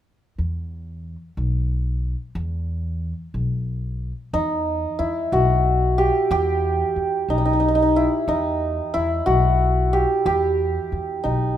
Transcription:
0.38 E2
1.37 B1
2.35 E2
3.34 B1
4.33 E2 D#4
4.99 E2 E4
5.32 B1 F#4
5.98 G4
6.31 E2 G4
6.96 E2
7.28 B1 D#4
7.38 D#4
7.45 D#4
7.53 D#4
7.60 D#4
7.68 D#4
7.75 D#4
7.82 D#4
7.96 E4
8.28 E2 D#4
8.94 E2 E4
9.26 B1 F#4
9.93 G4
10.26 E2 G4
10.92 E2
11.24 B1 D#4

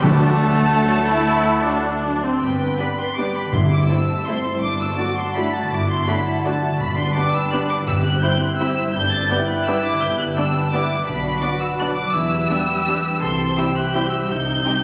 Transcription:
Already playing: D3 A3 D4
0.00 D2 D3 A3 D4 F#4
0.04 D2 A4 F#5 A5
0.42 F#3 A3 D4
0.84 F#3 D4
1.04 E4
1.62 F#3 D4
2.05 F#3 D4
2.24 C4
2.42 G1 G2 B4 G5
2.51 B3
2.59 D4
2.69 G4
2.78 G3 B3 D4 G4 B4 D5 B5
2.88 D5
2.98 G5 C6
3.07 D5
3.16 G3 B3 D4 G4 B4 D5 D6
3.27 G4
3.35 D4 B5
3.45 D3
3.52 G1 G2 E4 C6
3.62 C4
3.70 E4 D6
3.80 A4
3.87 A3 C4 E4 A4 C5 E6
3.99 E5
4.09 A5
4.18 E5
4.27 A3 C4 E4 A4 C5 C6
4.36 A4
4.45 E4
4.54 G3
4.62 G1 G2 D4 D6
4.71 D4
4.79 F#4 E6
4.88 A4
4.98 F#3 A3 D4 F#4 A4 D5 D6
5.08 F#5
5.18 A5 C6
5.26 F#5
5.35 F#3 A3 D4 E4 F#4 A4 D5 B5
5.45 A4
5.53 F#4 A5
5.62 D3
5.70 G1 G2 D6
5.79 D4
5.88 F#4 C6
5.97 A4
6.06 F#3 A3 D4 F#4 A4 D5 B5
6.16 F#5
6.26 A5
6.36 F#5
6.44 F#3 A3 D4 F#4 A4 D5 A5
6.53 A4
6.62 F#4
6.71 D3
6.79 G1 G2 D4 B5
6.88 D4
6.96 G4 C6
7.05 B4
7.15 G3 B3 D4 G4 D5 D6
7.24 G5
7.33 B5 E6
7.43 G5
7.51 G3 B3 D4 G4 D5 F#6
7.60 B4
7.70 G4 D6
7.78 D3
7.86 G1 G2 G4 E6
7.95 C4
8.04 G4 F#6
8.13 C5
8.22 G3 C4 E4 G4 C5 G6
8.31 G5
8.40 C6 F#6
8.50 G5
8.59 G3 C4 E4 G4 C5 E6
8.69 G4
8.78 C4
8.87 G3
8.94 G1 G2 D4 G6
9.03 D4
9.12 G4 A6
9.21 B4
9.30 G3 B3 D4 E4 G4 D5 G6
9.38 G5
9.47 B5 F#6
9.56 G5
9.65 G3 B3 D4 G4 D5 E6
9.75 B4
9.84 G4 D6
9.93 D3
10.01 G1 G2 G6
10.09 D4
10.18 G4 F#6
10.26 B4
10.36 G3 B3 D4 G4 D5 E6
10.46 G5
10.55 B5
10.64 G5
10.72 G3 B3 D4 E4 G4 D5 D6
10.81 B4
10.90 G4
10.98 D3
11.07 B1 B2 D4 B5
11.15 D4
11.24 F#4
11.32 B4
11.41 F#3 B3 D4 F#4 D5 D6
11.51 F#5
11.60 B5 E6
11.69 F#5
11.79 F#3 B3 D4 F#4 D5 F#6
11.87 B4
11.96 F#4 D6
12.05 F#3
12.13 E2 E3 E4 E6
12.22 D4
12.30 G4
12.39 B4
12.48 G3 B3 D4 G4 D5 E5
12.57 G5
12.66 B5
12.76 G5
12.85 G3 B3 D4 G4 D5 E5
12.95 B4
13.04 G4
13.13 B3
13.21 C2 C3 A4 C6
13.30 E4
13.38 G4
13.48 C5
13.57 G3 C4 E4 G4 E5 G5 E6
13.66 G5
13.76 C6 F#6
13.85 G5
13.93 G3 C4 E4 G4 E5 G5 G6
14.03 C5
14.12 G4 E6
14.21 G3
14.29 C2 C3 D#4 G6
14.38 D#4
14.48 G4
14.56 C5
14.65 G3 C4 D#4 G4 D#5 G5
14.75 G5

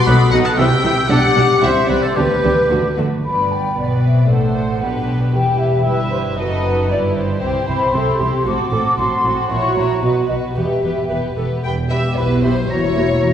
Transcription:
Already playing: F#4
0.06 B1 B2 F#3 B3 D#4 A4 F#5 B5 D#6
0.32 B1 B2 F#3 B3 D#4 A4 D#5 F#5
0.45 F#5 A5
0.56 C2 C3 E3 C4 E4 G4 E5 G5 E6
0.83 C2 C3 E3 C4 E4 G4
1.08 B1 B2 G3 D4 G4 D5 F#5 D6
1.35 B1 B2 G3 D4 G4
1.62 C2 C3 G3 C4 E4 G4 C5 E5 C6
1.88 C2 C3 G3 C4 E4 G4 B4 D5
2.02 A4 C5
2.16 D2 D3 G3 B3 D4 G4 B4 D6
2.43 D2 D3 G3 B3 D4 G4
2.70 D2 D3 A3 D4 F#4
2.97 D2 D3 A3 D4 F#4
3.24 G1 G2 B3 B4 D5 B5
3.52 G5
3.77 B1 B2 B3 B4 D5
4.04 C4 E5
4.30 A1 A2 D4 A4 C5 F#5
4.56 C5
4.82 B1 B2 D4 G4 B4
5.34 E1 E2 E4 G4 B4 G5
5.59 E5
5.85 G1 G2 E4 G4 B4 E5
6.11 C5
6.38 F#1 F#2 D#4 F#4 A4 B4 D#5
6.90 G1 G2 E4 G4 D5
7.16 C5
7.41 C2 C3 C4 E4 G4 G5
7.67 C2 C3 C4 E4 G4 B5
7.93 C2 C3 C4 E4 G4 A4 C6
8.19 C2 C3 C4 E4 G4
8.45 A1 A2 C4 F#4 A4 D6
8.72 A1 A2 C4 F#4 A4
8.97 A1 A2 C4 F#4 A4 C6
9.24 A1 A2 C4 F#4 A4
9.50 A#1 A#2 E4 F#4 C#5 C#6
9.75 A#1 A#2 E4 F#4 C#5 A#5
10.02 B1 B2 B3 F#4 B4 D#5
10.28 B1 B2 B3 F#4 B4 D#5
10.55 E1 E2 B3 G4 B4 E5
10.84 E1 E2 B3 G4 B4
11.10 E1 E2 B3 G4 B4
11.37 E1 E2 B3 G4 A4 B4
11.63 E1 E2 B3 G4 B4 G5 B5
11.90 B3 G4 E5 B5
12.17 B1 B2 E4 G4 B4 B5
12.43 B3 E4 G4 C5 B5
12.69 E1 E2 A#3 E4 F#4 C#5 A#5
12.96 A#3 F#4 A#5
13.23 E1 E2 F#4 A#5

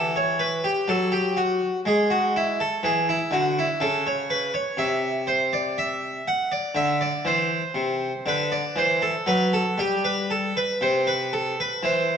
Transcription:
Already playing: E3 A4
0.16 C#5
0.39 B4
0.64 G4
0.88 F#3 A4
1.12 G4
1.37 F#4
1.85 G#3 G#4
2.10 F#4
2.36 E4
2.60 A4
2.83 E3 G#4
3.09 E4
3.31 D3 F#4
3.59 E4
3.80 C#3 A4
4.06 C#5
4.30 B4
4.54 C#5
4.77 C3 E5
5.27 C5
5.53 D5
5.78 E5
6.28 F#5
6.52 D5
6.75 D3 E5
7.01 D5
7.25 E3 C5
7.74 C3
8.26 D3 B4
8.52 D5
8.76 E3 C5
9.02 A4
9.26 F#3 B4
9.53 A4
9.78 G3 G4
10.04 B4
10.30 A4
10.57 B4
10.81 C3 C5
11.07 B4
11.33 A4
11.60 B4
11.83 E3 C5

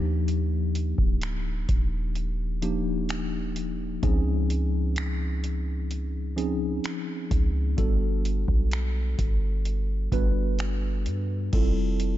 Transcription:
Already playing: D#2 F3 A#3 D4 D#4 G4
0.28 closed hi-hat
0.75 closed hi-hat
0.98 D1, kick
1.21 finger snap, closed hi-hat
1.69 D#1, kick, closed hi-hat
2.15 closed hi-hat
2.62 F3 A#3 D4 D#4 G4, closed hi-hat
3.09 finger snap, closed hi-hat
3.56 closed hi-hat
4.03 C#2 F3 C4 C#4 D#4 G#4, kick, closed hi-hat
4.50 closed hi-hat
4.96 finger snap, closed hi-hat
5.44 closed hi-hat
5.91 closed hi-hat
6.36 F3 C4 C#4 D#4 G#4, closed hi-hat
6.84 finger snap, closed hi-hat
7.31 C#2, kick, closed hi-hat
7.77 G1 G3 B3 D4 F#4 A4, kick, closed hi-hat
8.25 closed hi-hat
8.48 B1, kick
8.72 finger snap, closed hi-hat
9.19 G1, kick, closed hi-hat
9.65 closed hi-hat
10.12 G1 G3 B3 D4 F#4 B4, kick, closed hi-hat
10.59 finger snap, closed hi-hat
11.06 G2, closed hi-hat
11.53 F1 G3 C4 E4 F4 A4, kick, closed hi-hat, crash
12.00 closed hi-hat

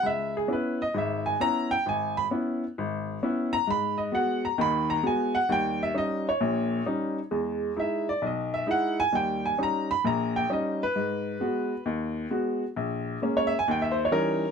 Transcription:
0.03 C#2 E5
0.37 G#4
0.48 B3 C#4 E4
0.53 B4
0.82 D#5
0.94 G#1 G#2 E5
1.26 G#5
1.40 B3 C#4 E4 A#5
1.71 G5
1.86 G#1 G#5
2.17 B5
2.31 B3 C#4 E4
2.78 G#1
3.23 B3 C#4 E4
3.53 A#5
3.67 G#2 B5
3.98 D#5
4.12 G#3 B3 F#4 F#5
4.45 A#5
4.58 D#2 D#3 B5
4.90 A#5
5.03 G#3 B3 F#4 G#5
5.35 F#5
5.49 D#2 G3 G5
5.83 E5
5.94 G3 C#4 D#4 D#5
6.29 C#5
6.41 A#1 A#2
6.86 G3 C#4 D#4
7.31 E2 G#3
7.76 G#3 D#4 E4 E5
8.09 D5
8.22 B1
8.26 D#5
8.54 E5
8.66 G#3 D#4 E4
8.71 F#5
9.00 G#5
9.13 D#2 G3 G5
9.45 G#5
9.58 G3 C#4 D#4
9.63 A#5
9.91 B5
10.04 A#1 A#2 A#5
10.36 G5
10.50 G3 C#4 D#4 D#5
10.83 B4
10.96 G#2
11.40 G#3 B3 F#4
11.86 D#2
12.30 G#3 B3 F#4
12.76 A#1
13.22 G#3 A#3 C#4
13.37 C#5
13.47 E5
13.59 G#5
13.68 D#2 G5
13.82 E5
13.92 C5
14.05 C#5
14.12 E3 G3 C#4 D#4 A#4

